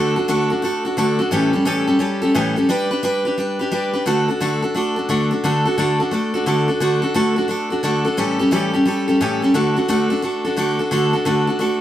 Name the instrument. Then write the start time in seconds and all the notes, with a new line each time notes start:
steel-string acoustic guitar
Already playing: D3 A3 D4 F#4 A4
0.16 D4 F#4 A4
0.28 D3 A3 D4 F#4 A4
0.50 D4 F#4 A4
0.62 A3 D4 F#4 A4
0.85 D4 F#4 A4
0.97 D3 A3 D4 F#4 A4
1.19 D4 F#4 A4
1.31 A2 E3 G3 C#4 G4 A4
1.53 G3 C#4 G4 A4
1.65 A2 E3 G3 C#4 G4 A4
1.87 G3 C#4 G4 A4
1.99 G3 C#4 G4 A4
2.22 G3 C#4 G4 A4
2.35 A2 E3 G3 C#4 G4 A4
2.56 G3 C#4 G4 A4
2.69 G3 D4 G4 B4
2.91 D4 G4 B4
3.03 G3 D4 G4 B4
3.25 D4 G4 B4
3.38 G3 D4 G4 B4
3.59 D4 G4 B4
3.72 G3 D4 G4 B4
3.93 D4 G4 B4
4.06 D3 A3 D4 F#4 A4
4.28 D4 F#4 A4
4.41 D3 A3 D4 F#4 A4
4.62 D4 F#4 A4
4.74 A3 D4 F#4 A4
4.96 D4 F#4 A4
5.09 D3 A3 D4 F#4 A4
5.31 D4 F#4 A4
5.44 D3 A3 D4 F#4 A4
5.65 D4 F#4 A4
5.78 D3 A3 D4 F#4 A4
6.00 D4 F#4 A4
6.11 A3 D4 F#4 A4
6.34 D4 F#4 A4
6.46 D3 A3 D4 F#4 A4
6.68 D4 F#4 A4
6.80 D3 A3 D4 F#4 A4
7.02 D4 F#4 A4
7.14 D3 A3 D4 F#4 A4
7.36 D4 F#4 A4
7.48 A3 D4 F#4 A4
7.70 D4 F#4 A4
7.83 D3 A3 D4 F#4 A4
8.05 D4 F#4 A4
8.17 A2 E3 G3 C#4 G4 A4
8.39 G3 C#4 G4 A4
8.51 A2 E3 G3 C#4 G4 A4
8.73 G3 C#4 G4 A4
8.86 G3 C#4 G4 A4
9.08 G3 C#4 G4 A4
9.21 A2 E3 G3 C#4 G4 A4
9.42 G3 C#4 G4 A4
9.54 D3 A3 D4 F#4 A4
9.76 D4 F#4 A4
9.88 D3 A3 D4 F#4 A4
10.10 D4 F#4 A4
10.22 A3 D4 F#4 A4
10.45 D4 F#4 A4
10.57 D3 A3 D4 F#4 A4
10.79 D4 F#4 A4
10.91 D3 A3 D4 F#4 A4
11.13 D4 F#4 A4
11.25 D3 A3 D4 F#4 A4
11.47 D4 F#4 A4
11.59 A3 D4 F#4 A4